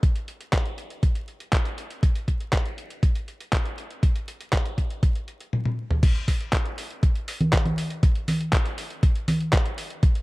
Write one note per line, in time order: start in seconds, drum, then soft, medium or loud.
0.03 kick loud
0.03 closed hi-hat medium
0.16 closed hi-hat soft
0.28 closed hi-hat medium
0.41 closed hi-hat soft
0.53 kick loud
0.53 clap loud
0.53 closed hi-hat medium
0.66 closed hi-hat soft
0.78 closed hi-hat medium
0.90 closed hi-hat soft
1.03 kick loud
1.03 closed hi-hat medium
1.15 closed hi-hat soft
1.28 closed hi-hat soft
1.40 closed hi-hat soft
1.53 kick loud
1.53 clap loud
1.53 closed hi-hat medium
1.65 closed hi-hat soft
1.78 closed hi-hat medium
1.90 closed hi-hat soft
2.03 kick loud
2.03 closed hi-hat medium
2.15 closed hi-hat soft
2.28 kick medium
2.28 closed hi-hat medium
2.40 closed hi-hat soft
2.53 kick loud
2.53 clap loud
2.53 closed hi-hat medium
2.66 closed hi-hat soft
2.78 closed hi-hat medium
2.90 closed hi-hat soft
3.03 kick loud
3.03 closed hi-hat medium
3.16 closed hi-hat soft
3.28 closed hi-hat soft
3.41 closed hi-hat soft
3.53 kick loud
3.53 clap loud
3.53 closed hi-hat medium
3.65 closed hi-hat soft
3.78 closed hi-hat medium
3.91 closed hi-hat soft
4.03 kick loud
4.03 closed hi-hat medium
4.16 closed hi-hat soft
4.28 closed hi-hat medium
4.41 closed hi-hat soft
4.53 kick loud
4.53 clap loud
4.53 closed hi-hat medium
4.66 closed hi-hat soft
4.78 kick medium
4.78 closed hi-hat medium
4.91 closed hi-hat soft
5.03 kick loud
5.03 closed hi-hat loud
5.16 closed hi-hat soft
5.28 closed hi-hat soft
5.40 closed hi-hat soft
5.53 high tom medium
5.65 high tom medium
5.91 mid tom medium
6.03 kick loud
6.03 closed hi-hat loud
6.03 crash loud
6.16 closed hi-hat soft
6.28 kick medium
6.28 open hi-hat loud
6.41 closed hi-hat soft
6.53 kick loud
6.53 clap loud
6.53 closed hi-hat loud
6.66 closed hi-hat soft
6.78 open hi-hat loud
6.91 closed hi-hat soft
7.03 kick loud
7.03 closed hi-hat loud
7.16 closed hi-hat soft
7.28 open hi-hat loud
7.41 closed hi-hat soft
7.41 high conga medium
7.53 kick loud
7.53 clap loud
7.53 closed hi-hat medium
7.65 closed hi-hat soft
7.65 high conga medium
7.78 open hi-hat loud
7.90 closed hi-hat soft
8.03 kick loud
8.03 closed hi-hat loud
8.15 closed hi-hat soft
8.28 open hi-hat loud
8.28 high conga medium
8.41 closed hi-hat soft
8.53 kick loud
8.53 clap loud
8.53 closed hi-hat loud
8.66 closed hi-hat soft
8.78 open hi-hat loud
8.90 closed hi-hat soft
9.03 kick loud
9.03 closed hi-hat loud
9.15 closed hi-hat soft
9.28 open hi-hat loud
9.28 high conga medium
9.40 closed hi-hat soft
9.53 kick loud
9.53 clap loud
9.53 closed hi-hat loud
9.66 closed hi-hat soft
9.78 open hi-hat loud
9.90 closed hi-hat soft
10.03 kick loud
10.03 closed hi-hat loud
10.15 closed hi-hat soft